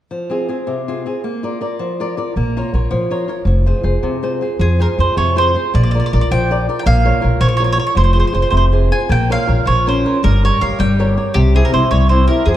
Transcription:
0.11 F3
0.30 C4 F4 G#4
0.48 C4 F4 G#4
0.67 C3
0.88 C4 F4 G#4
1.06 C4 F4 G#4
1.24 A#3
1.43 F4 A#4 D5
1.61 F4 A#4 D5
1.79 F3
2.00 F4 A#4 D5
2.17 F4 A#4 D5
2.36 A#1 A#3
2.57 F4 A#4 C#5
2.74 A#1 F4 A#4 C#5
2.91 A#2 F3
3.11 F4 A#4 C#5
3.28 F4 A#4 C#5
3.45 F1 F3
3.66 F4 G#4 C5
3.83 F1 F4 G#4 C5
4.03 F2 C3
4.23 F4 G#4 C5
4.41 F4 G#4 C5
4.59 F2 F3 G#4
4.79 F4 G#4 A#4 C5
4.98 F2 F4 G#4 C5
5.17 F2 C3 C#5
5.36 F4 G#4 C5
5.55 F4 G#4 C5
5.74 A#1 A#3 D5
5.83 D5
5.91 F4 A#4 D5
6.00 D5
6.06 D5
6.13 A#1 F4 A#4 D5
6.21 D5
6.31 A#1 F3 G5
6.51 F4 A#4 D5
6.69 F4 A#4 D5
6.79 G5
6.86 A#1 A#3 F5
7.05 F4 A#4 C#5
7.21 A#1 F4 A#4 C#5
7.41 A#1 F3 C#5
7.49 C#5
7.57 F4 A#4 C#5
7.61 C#5
7.72 C#5
7.77 F4 A#4 C#5
7.87 C#5
7.95 F1 F3 C5
8.04 C5
8.13 F4 G#4 C5
8.20 C5
8.27 C5
8.32 F1 F4 G#4 C5
8.42 C5
8.50 F1 C3 C5
8.57 C5
8.72 F4 G#4 C5
8.91 F4 G#4 C5 G#5
9.09 A#1 A#3 G5
9.30 F4 A#4 C#5 F5
9.47 A#1 F4 A#4 C#5
9.65 A#1 F3 C#5
9.86 C#4 F4 A#4 C5
10.05 F4 A#4 C#5
10.23 G1 G3 A#4
10.43 G4 A#4 C#5
10.61 G1 G4 A#4 C#5 F5
10.79 G1 G3 G5
10.99 G4 A#4 C#5
11.17 G4 A#4 C#5
11.34 C2 C3 G4
11.54 C4 E4 G4 G#4
11.65 A#4
11.72 C2 C4 E4 G4 C5
11.91 C2 G3 C#5
12.09 C4 E4 G4 C5
12.27 C4 E4 G4 A#4
12.45 F2 F3 G#4

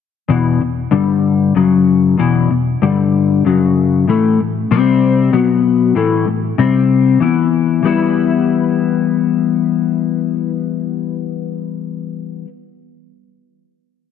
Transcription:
0.29 E2 B2 E3
0.62 B2
0.91 G2 D3 G3
1.55 F#2 C#3 F#3
2.18 E2 B2 E3
2.51 E2 B2
2.82 G2 D3 G3
3.45 F#2 C#3 F#3
4.08 A2 E3 A3
4.40 A2 E3
4.71 C3 G3 C4
5.33 B2 F#3 B3
5.95 A2 E3 A3
6.28 A2 E3
6.58 C3 G3 C4
7.20 E3 B3 E4
7.83 E3 G3 B3 E4

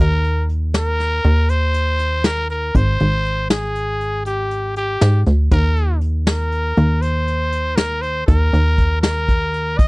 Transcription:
0.00 D#2 A#4
0.24 closed hi-hat
0.49 closed hi-hat
0.74 A#4, snare, closed hi-hat
0.99 snare, closed hi-hat
1.24 D#2, closed hi-hat
1.49 C5, closed hi-hat
1.74 closed hi-hat
1.99 closed hi-hat
2.24 A#4, snare, closed hi-hat
2.50 A#4, closed hi-hat
2.75 G#1 C5, kick, closed hi-hat
3.00 G#1, closed hi-hat
3.25 closed hi-hat
3.50 G#4, snare, closed hi-hat
3.75 closed hi-hat
4.01 closed hi-hat
4.26 G4, closed hi-hat
4.51 closed hi-hat
4.76 G4, closed hi-hat
5.01 G#2, snare, closed hi-hat
5.26 D2, snare, closed hi-hat
5.51 D#2 A#4, kick, closed hi-hat
5.76 closed hi-hat
6.01 closed hi-hat
6.27 A#4, snare, closed hi-hat
6.52 closed hi-hat
6.77 D#2, closed hi-hat
7.02 C5, closed hi-hat
7.27 closed hi-hat
7.52 closed hi-hat
7.76 A#4, snare, closed hi-hat
8.02 C5, closed hi-hat
8.27 D#2 A#4, kick, closed hi-hat
8.53 D#2, closed hi-hat
8.78 kick, closed hi-hat
9.01 A#4, snare, closed hi-hat
9.28 kick, closed hi-hat
9.54 closed hi-hat
9.78 D#5, kick, closed hi-hat

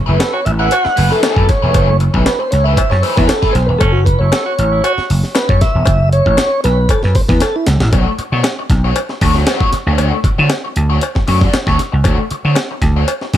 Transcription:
0.06 F#1 A3 E4 G#4 B4
0.18 A4 B4, muted overdriven electric guitar stroke, snare, closed hi-hat, cowbell
0.33 F#4 C#5, muted overdriven electric guitar stroke
0.45 A1 E5, closed hi-hat
0.59 A3 E4 G#4 B4 F#5
0.71 F#4, muted overdriven electric guitar stroke, closed hi-hat, cowbell
0.85 muted overdriven electric guitar stroke, muted slap bass stroke, snare
0.96 F#1 A3 E4 G#4 B4, open hi-hat
1.11 A3 E4 G#4 A4 B4, snare
1.22 A3 E4 G#4 B4, snare, closed hi-hat, cowbell
1.37 F#2, kick
1.48 C#5, muted overdriven electric guitar stroke, kick, snare, closed hi-hat
1.62 E1 A3 E4 G#4 B4
1.74 F#1 A3 E4 G#4 B4, kick, closed hi-hat, cowbell
1.88 muted overdriven electric guitar stroke
2.00 muted overdriven electric guitar stroke, closed hi-hat
2.14 B1 A3 E4 G#4 B4, kick
2.26 B4, muted overdriven electric guitar stroke, snare, closed hi-hat, cowbell
2.39 C5, muted overdriven electric guitar stroke
2.51 C#2 C#5, snare, closed hi-hat
2.64 A3 E4 G#4 B4 E5
2.77 muted slap bass stroke, muted overdriven electric guitar stroke, kick, closed hi-hat, cowbell
2.90 F#2 C#5, muted overdriven electric guitar stroke, snare
3.02 A3 E4 G#4 B4 C5, open hi-hat
3.17 E2 A3 E4 G#4 B4 C#5, kick, snare
3.28 A4, muted overdriven electric guitar stroke, snare, closed hi-hat, cowbell
3.42 A3 E4 G#4 B4, kick, snare
3.53 B1 C5, muted overdriven electric guitar stroke, snare, closed hi-hat
3.66 E1 B4, muted overdriven electric guitar stroke
3.78 F#1 C#4 A4, kick, closed hi-hat, cowbell
3.93 F#4
4.05 B4, kick, closed hi-hat
4.19 F#1 E4 C#5
4.32 A4, snare, closed hi-hat, cowbell
4.45 F#4
4.59 A1, closed hi-hat
4.71 E4
4.84 F#4, closed hi-hat, cowbell
4.98 muted slap bass stroke, snare
5.10 F#1, open hi-hat
5.24 snare
5.35 B4, snare, closed hi-hat, cowbell
5.49 F#2 C#5, kick
5.61 E5, kick, snare, closed hi-hat
5.75 E1
5.85 F#1, kick, closed hi-hat, cowbell
6.12 C#5, closed hi-hat
6.26 A1, kick
6.37 snare, closed hi-hat, cowbell
6.64 B1 B4, snare, closed hi-hat
6.89 A4, muted slap bass stroke, kick, closed hi-hat, cowbell
7.03 F#2 B4, snare
7.15 C5, kick, open hi-hat
7.29 E2 B4, kick, snare
7.40 A4, snare, closed hi-hat, cowbell
7.56 E4
7.66 C#2, snare, closed hi-hat
7.80 A1, snare
7.93 B1 A3 D4 F#4 C#5, kick, closed hi-hat, cowbell
8.06 muted overdriven electric guitar stroke
8.19 muted slap bass stroke, muted overdriven electric guitar stroke, closed hi-hat
8.32 B2 A3 D4 F#4 C#5
8.44 muted overdriven electric guitar stroke, snare, closed hi-hat, cowbell
8.59 muted overdriven electric guitar stroke
8.70 B1, kick, snare, closed hi-hat
8.84 A3 D4 F#4 C#5
8.96 muted overdriven electric guitar stroke, closed hi-hat, cowbell
9.09 muted overdriven electric guitar stroke, snare
9.21 D2 A3 D4 F#4 C#5, kick, open hi-hat
9.35 A3 D4 F#4 C#5, snare
9.47 A3 D4 F#4 C#5, snare, closed hi-hat, cowbell
9.60 kick
9.73 muted slap bass stroke, muted overdriven electric guitar stroke, snare, closed hi-hat
9.87 D2 A3 D4 F#4 C#5
9.98 D2 A3 D4 F#4 C#5, closed hi-hat, cowbell
10.13 muted overdriven electric guitar stroke
10.24 muted slap bass stroke, muted overdriven electric guitar stroke, kick, closed hi-hat
10.38 D3 A3 D4 F#4 C#5
10.49 muted overdriven electric guitar stroke, snare, closed hi-hat, cowbell
10.65 muted overdriven electric guitar stroke
10.76 D2, closed hi-hat
10.90 A3 D4 F#4 C#5
11.01 muted overdriven electric guitar stroke, closed hi-hat, cowbell
11.15 muted overdriven electric guitar stroke, kick, snare
11.27 F#2 A3 D4 F#4 C#5, open hi-hat
11.41 A3 D4 F#4 D5, kick, snare
11.53 muted overdriven electric guitar stroke, muted slap bass stroke, snare, closed hi-hat, cowbell
11.67 D2 A3 D4 F#4 C#5, kick, snare
11.79 muted overdriven electric guitar stroke, snare, closed hi-hat
11.92 C#2, muted overdriven electric guitar stroke
12.04 D2 A3 D4 F#4 C#5, kick, closed hi-hat, cowbell
12.18 muted overdriven electric guitar stroke
12.31 muted slap bass stroke, muted overdriven electric guitar stroke, closed hi-hat
12.45 D3 A3 D4 F#4 C#5
12.55 muted overdriven electric guitar stroke, snare, closed hi-hat, cowbell
12.71 muted overdriven electric guitar stroke
12.82 D2, kick, snare, closed hi-hat
12.96 A3 D4 F#4 C#5
13.08 muted overdriven electric guitar stroke, closed hi-hat, cowbell
13.21 muted overdriven electric guitar stroke, snare
13.33 F#2, kick, open hi-hat

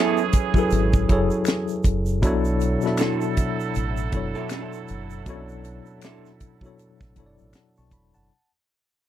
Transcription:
Already playing: E3 F#3 B3 C#4 E4 G#4 A4 B4
0.17 shaker
0.33 kick, closed hi-hat, shaker
0.54 F#3 E4 G#4, kick, shaker
0.58 A4 B4
0.71 G#1, closed hi-hat, shaker
0.93 kick, shaker
1.08 F#1 F#3 E4 G#4 A4, kick, closed hi-hat
1.13 C#5
1.30 shaker
1.45 finger snap, snare, closed hi-hat, shaker
1.68 shaker
1.83 F#1, kick, closed hi-hat, shaker
2.06 shaker
2.22 B1 B2 F#3 D4 E4 A4, kick, closed hi-hat, shaker
2.27 C#5
2.45 shaker
2.60 closed hi-hat, shaker
2.81 B2 F#3 D4, shaker
2.85 E4 A4 E5, snare
2.97 D4 E4 A4, finger snap, snare, closed hi-hat, shaker
3.21 shaker
3.37 kick, closed hi-hat, shaker
3.60 shaker
3.75 A1, closed hi-hat, shaker
3.97 shaker
4.12 F#1 B2 F#3 D4 E4 A4, kick, closed hi-hat
4.17 C#5
4.35 D4 E4 A4, shaker
4.49 D4 E4 A4, finger snap, snare, closed hi-hat, shaker
4.73 shaker
4.88 F#1, closed hi-hat, shaker
5.10 shaker
5.26 B1 B2 F#3 C#4 E4 A4, kick, closed hi-hat, shaker
5.30 C#5
5.34 D4
5.49 shaker
5.64 closed hi-hat, shaker
5.86 shaker
6.01 D4 E4, finger snap, snare, closed hi-hat, shaker
6.05 A4
6.25 snare, shaker
6.40 kick, closed hi-hat, shaker
6.61 B2 F#3 D4 E4, kick, shaker
6.65 A4 C#5
6.79 closed hi-hat, shaker
7.01 A1, kick, snare, shaker
7.16 F#1 B2 F#3 D4 E4 A4, kick, closed hi-hat
7.20 C#5
7.26 D5
7.38 A1, shaker
7.53 F#5 A5, finger snap, snare, closed hi-hat, shaker
7.76 B1 A5 C#6, shaker
7.91 B5, kick, closed hi-hat, shaker
8.14 F#1 F#5 A5, shaker

